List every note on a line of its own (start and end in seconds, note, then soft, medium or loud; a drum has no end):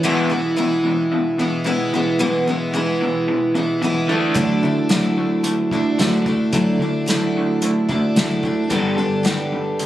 0.03 0.30 E2 medium
0.03 0.29 E2 medium
0.03 0.30 B2 medium
0.03 0.29 B2 medium
0.03 0.30 E3 medium
0.03 0.29 E3 loud
0.03 0.30 G#3 medium
0.03 0.29 B3 medium
0.03 0.28 E4 medium
0.30 0.55 E2 medium
0.30 0.55 B2 medium
0.30 0.55 E3 soft
0.30 0.56 G#3 soft
0.30 0.57 B3 soft
0.30 0.57 E4 medium
0.57 0.82 E2 medium
0.57 0.82 B2 medium
0.57 1.41 E3 medium
0.57 1.38 G#3 medium
0.57 1.38 B3 medium
0.57 1.39 E4 medium
0.84 1.08 E2 medium
0.84 1.09 B2 medium
1.12 1.36 E2 medium
1.12 1.36 B2 medium
1.38 1.63 E2 medium
1.38 1.63 B2 medium
1.38 1.63 E3 soft
1.38 1.65 G#3 soft
1.38 1.66 B3 soft
1.38 1.66 E4 soft
1.64 1.90 E2 medium
1.64 1.90 B2 medium
1.64 1.92 E3 medium
1.64 1.93 G#3 medium
1.64 1.93 B3 medium
1.64 1.92 E4 medium
1.93 2.17 E2 medium
1.93 2.17 B2 medium
1.93 2.19 E3 soft
1.93 2.19 G#3 soft
1.93 2.20 B3 medium
1.93 2.19 E4 soft
2.19 2.47 E2 medium
2.19 2.44 E2 medium
2.19 2.47 B2 medium
2.19 2.44 B2 medium
2.19 2.47 E3 medium
2.19 2.47 G#3 medium
2.19 2.47 B3 medium
2.19 2.46 E4 medium
2.47 2.71 E2 medium
2.47 2.71 B2 medium
2.47 2.72 E3 soft
2.47 2.73 G#3 soft
2.47 2.74 B3 soft
2.47 2.74 E4 medium
2.74 2.98 E2 medium
2.74 2.98 B2 medium
2.74 3.57 E3 medium
2.74 3.56 G#3 medium
2.74 3.55 B3 medium
2.74 3.55 E4 medium
3.01 3.25 E2 medium
3.01 3.26 B2 medium
3.28 3.53 E2 medium
3.28 3.53 B2 medium
3.55 3.79 E2 medium
3.55 3.79 B2 medium
3.55 3.81 E3 soft
3.55 3.82 G#3 soft
3.55 3.83 B3 soft
3.55 3.82 E4 soft
3.82 4.06 E2 medium
3.82 4.07 B2 medium
3.82 4.10 E3 medium
3.82 4.10 G#3 medium
3.82 4.10 B3 medium
3.82 4.08 E4 medium
4.07 4.34 D3 medium
4.07 4.34 A3 medium
4.07 4.35 D4 medium
4.07 4.35 D4 soft
4.07 4.36 E4 medium
4.12 4.35 A3 soft
4.34 4.60 D2 medium
4.34 4.63 D3 medium
4.34 4.61 D3 medium
4.34 4.63 F#3 medium
4.34 4.64 A3 medium
4.34 4.62 A3 medium
4.34 8.67 D4 medium
4.34 4.64 D4 medium
4.34 8.67 E4 medium
4.34 4.62 E4 medium
4.34 8.67 F#4 medium
4.34 8.67 A4 medium
4.34 kick loud
4.34 closed hi-hat medium
4.63 4.88 D3 medium
4.63 5.60 D3 medium
4.63 4.88 A3 medium
4.63 4.90 A3 soft
4.63 4.90 D4 soft
4.63 4.91 E4 medium
4.89 5.15 D3 medium
4.89 5.71 F#3 medium
4.89 5.15 A3 medium
4.89 5.75 A3 medium
4.89 5.73 D4 medium
4.89 5.71 E4 medium
4.89 snare loud
4.89 closed hi-hat medium
5.18 5.42 D3 medium
5.18 5.43 A3 medium
5.44 5.69 D3 medium
5.44 5.69 A3 medium
5.44 closed hi-hat medium
5.71 5.97 D3 medium
5.71 5.97 A3 medium
5.71 5.98 A3 soft
5.71 6.00 D4 soft
5.71 6.00 E4 medium
5.71 kick medium
5.98 6.48 D2 medium
5.98 6.23 D3 medium
5.98 6.26 F#3 medium
5.98 6.24 A3 medium
5.98 6.27 A3 medium
5.98 6.26 D4 medium
5.98 6.25 E4 medium
5.98 snare loud
5.98 closed hi-hat medium
6.25 6.50 D3 medium
6.25 6.51 A3 medium
6.25 6.52 A3 soft
6.25 6.53 D4 soft
6.25 6.53 E4 medium
6.25 kick medium
6.53 6.78 D2 medium
6.53 6.80 D3 medium
6.53 6.78 D3 medium
6.53 6.80 F#3 medium
6.53 6.81 A3 medium
6.53 6.78 A3 medium
6.53 6.81 D4 medium
6.53 6.81 E4 medium
6.53 kick loud
6.53 closed hi-hat medium
6.79 7.77 D3 medium
6.79 7.05 D3 medium
6.79 7.06 A3 medium
6.79 7.07 D4 medium
6.79 7.08 E4 medium
6.84 7.06 A3 soft
7.06 7.33 D3 medium
7.06 7.89 F#3 medium
7.06 7.90 A3 medium
7.06 7.33 A3 medium
7.06 7.89 D4 medium
7.06 7.87 E4 medium
7.06 snare loud
7.06 closed hi-hat medium
7.37 7.61 D3 medium
7.37 7.61 A3 medium
7.62 7.87 D3 medium
7.62 7.87 A3 medium
7.62 closed hi-hat medium
7.89 8.14 D3 medium
7.89 8.15 A3 medium
7.89 8.16 A3 soft
7.89 8.17 D4 soft
7.89 8.16 E4 soft
7.89 kick medium
8.16 8.65 D2 medium
8.16 8.42 D3 medium
8.16 8.44 F#3 medium
8.16 8.44 A3 medium
8.16 8.42 A3 medium
8.16 8.44 D4 medium
8.16 8.42 E4 medium
8.16 snare loud
8.16 closed hi-hat medium
8.43 8.68 D3 medium
8.43 8.68 A3 medium
8.43 8.71 A3 soft
8.43 8.70 D4 medium
8.43 8.71 E4 medium
8.43 kick medium
8.68 8.95 G1 medium
8.68 8.96 G2 loud
8.68 8.97 D3 medium
8.68 8.98 G3 medium
8.68 8.97 G3 loud
8.68 9.86 B3 medium
8.68 8.98 B3 medium
8.68 9.86 D4 medium
8.68 8.98 D4 medium
8.68 9.86 G4 medium
8.68 9.86 A4 medium
8.68 8.97 A4 medium
8.68 kick loud
8.68 closed hi-hat medium
8.97 9.22 G2 medium
8.97 9.86 G2 medium
8.97 9.22 D3 medium
8.97 9.23 B3 soft
8.97 9.24 D4 soft
8.97 9.24 A4 medium
9.23 9.50 G2 medium
9.23 9.50 D3 medium
9.23 9.86 G3 medium
9.23 9.86 B3 medium
9.23 9.86 D4 medium
9.23 9.86 A4 medium
9.23 snare loud
9.23 closed hi-hat medium
9.52 9.77 G2 medium
9.52 9.77 D3 medium
9.79 9.86 G2 medium
9.79 9.86 D3 medium
9.79 closed hi-hat medium